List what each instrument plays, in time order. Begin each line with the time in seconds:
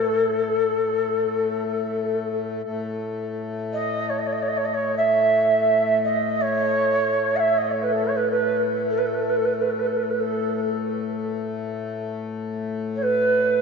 Already playing: harmonium A2 A3, native american-style wooden flute A4
2.63 harmonium A2 A3
3.73 native american-style wooden flute D#5
4.09 native american-style wooden flute C#5
4.18 native american-style wooden flute D#5
4.26 native american-style wooden flute C#5
4.32 native american-style wooden flute D#5
4.42 native american-style wooden flute C#5
4.48 native american-style wooden flute D#5
4.57 native american-style wooden flute C#5
4.65 native american-style wooden flute D#5
4.73 native american-style wooden flute C#5
4.97 native american-style wooden flute E5
6.04 native american-style wooden flute D#5
6.41 native american-style wooden flute C#5
7.35 native american-style wooden flute E5 F#5
7.57 native american-style wooden flute D#5
7.71 native american-style wooden flute C#5
7.82 native american-style wooden flute B4
7.92 native american-style wooden flute A4
8.04 native american-style wooden flute C#5
8.16 native american-style wooden flute B4
8.30 native american-style wooden flute B4
8.90 native american-style wooden flute A4
8.97 native american-style wooden flute B4
9.06 native american-style wooden flute A4
9.14 native american-style wooden flute B4
9.20 native american-style wooden flute A4
9.29 native american-style wooden flute B4
9.36 native american-style wooden flute A4
9.44 native american-style wooden flute B4
9.53 native american-style wooden flute A4
9.61 native american-style wooden flute B4
9.70 native american-style wooden flute A4
9.78 native american-style wooden flute B4
9.86 native american-style wooden flute A4
9.96 native american-style wooden flute B4
10.02 native american-style wooden flute A4
10.10 native american-style wooden flute B4
10.20 native american-style wooden flute A4
12.95 native american-style wooden flute C#5
13.02 native american-style wooden flute B4